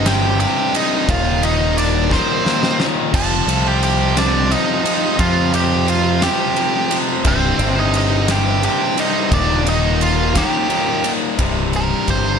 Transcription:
Already playing: fingered electric bass G1
0.06 distorted electric guitar C2 G2 C3, lead electric guitar G4 G5, snare, ride
0.39 distorted electric guitar C2 G2 C3, lead electric guitar G4 G5, ride
0.73 distorted electric guitar C2 G2 C3, lead electric guitar D#4 D#5, ride
1.08 fingered electric bass D#1, distorted electric guitar D#2 A#2 D#3, lead electric guitar F4 F5, kick, ride
1.43 distorted electric guitar D#2 A#2 D#3, lead electric guitar D#4 D#5, ride
1.78 lead electric guitar D4 D5, ride
2.11 distorted electric guitar D#2 A#2 D#3, lead electric guitar C4 C5, kick, snare
2.45 distorted electric guitar D#2 A#2 D#3, snare
2.63 snare
2.79 distorted electric guitar D#2 A#2 D#3, snare
3.14 fingered electric bass F1, distorted electric guitar F2 C3 F3, lead electric guitar A4 A5, kick, crash
3.47 fingered electric bass C2, distorted electric guitar F2 C3 F3, ride
3.67 lead electric guitar G4 G5
3.83 lead electric guitar G4 G5, ride
4.16 distorted electric guitar F2 C3 F3, lead electric guitar D4 D5, snare, ride
4.51 distorted electric guitar F2 C3 F3, lead electric guitar D#4 D#5, ride
4.85 distorted electric guitar F2 C3 F3, ride
5.19 distorted electric guitar F2 C3 F3, fingered electric bass F2, lead electric guitar F4 F5, kick, ride
5.53 distorted electric guitar F2 C3 F3, lead electric guitar G4 G5, ride
5.88 lead electric guitar F4 F5, ride
6.22 distorted electric guitar F2 C3 F3, lead electric guitar G4 G5, snare, ride
6.56 distorted electric guitar F2 C3 F3, ride
6.91 distorted electric guitar F2 C3 F3, ride
7.25 fingered electric bass C1, distorted electric guitar C2 G2 C3, lead electric guitar C4 C5, kick, ride
7.59 fingered electric bass G1, distorted electric guitar C2 G2 C3, ride
7.79 lead electric guitar D#4 D#5
7.94 lead electric guitar D#4 D#5, ride
8.28 distorted electric guitar C2 G2 C3, lead electric guitar G4 G5, snare, ride
8.63 distorted electric guitar C2 G2 C3, lead electric guitar G4 G5, ride
8.98 distorted electric guitar C2 G2 C3, lead electric guitar D#4 D#5, ride
9.31 fingered electric bass D#1, distorted electric guitar D#2 A#2 D#3, lead electric guitar D4 D5, kick, ride
9.66 distorted electric guitar D#2 A#2 D#3, lead electric guitar D#4 D#5, ride
10.01 lead electric guitar F4 F5, ride
10.34 distorted electric guitar D#2 A#2 D#3, lead electric guitar G4, kick, snare, ride
10.39 lead electric guitar G5
10.69 distorted electric guitar D#2 A#2 D#3, ride
11.04 distorted electric guitar D#2 A#2 D#3, ride
11.38 fingered electric bass C1, distorted electric guitar C2 G2 C3 G3 D#4, kick, ride
11.73 lead electric guitar A#4, ride
12.08 fingered electric bass G1, lead electric guitar C5, kick, ride

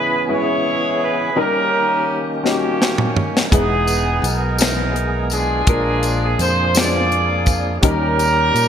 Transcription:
Already playing: grand piano C#3 G#3 C#4 E4 B4, tonewheel organ E3 B3 C#4 G#4, horn section E4 G#4 B4
0.28 grand piano G#3 C#4 E4 B4, horn section E4
0.32 horn section G#4 C#5
1.04 horn section B4
1.35 tonewheel organ D#3 A#3 C#4 G4, grand piano D#3 G3 C#4 D#4 A#4, horn section G4
1.39 horn section C#4 A#4
2.43 grand piano G3 C#4 D#4 F#4, horn section A#3 C#4 G4, snare
2.51 grand piano G4
2.82 snare
2.98 mid tom
3.17 floor tom
3.37 snare
3.49 fingered electric bass E1, grand piano E3 G#3 D#4 G#4 B4, tonewheel organ G#3 B3 G#4, horn section B3 D#4 G#4, kick, closed hi-hat
3.88 closed hi-hat, tambourine
4.22 fingered electric bass B1, horn section D#4 A#4, closed hi-hat, tambourine
4.58 grand piano E3 G#3 D#4 A#4, snare, closed hi-hat, tambourine
4.96 closed hi-hat
5.30 horn section D4 F4 G#4, closed hi-hat, tambourine
5.66 fingered electric bass A#1, grand piano A#2 G#3 D4 F4 A#4, tonewheel organ F3 A#3 D4 G#4, kick, closed hi-hat
6.03 closed hi-hat, tambourine
6.24 horn section G#4
6.39 fingered electric bass F2, horn section C5, closed hi-hat, tambourine
6.74 grand piano G#3 D4 F4 B4, horn section F4, snare, closed hi-hat, tambourine
6.78 horn section G#4 D5
6.83 grand piano C5
7.12 closed hi-hat
7.46 kick, closed hi-hat, tambourine
7.81 fingered electric bass D#2, tonewheel organ D#3 G3 C#4 F#4, grand piano D#3 G3 C#4 D#4 A#4, kick, closed hi-hat
7.87 horn section C#4 G4 A#4, tonewheel organ G4
8.19 closed hi-hat, tambourine
8.54 fingered electric bass A#2, closed hi-hat, tambourine

